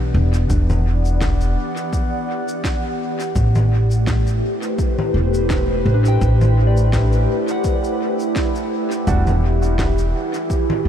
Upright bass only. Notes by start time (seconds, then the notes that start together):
Already playing: B1
0.14 E1
0.50 E1
3.36 A1
5.14 E1
5.86 A1
6.21 A1
9.07 E1
10.85 B1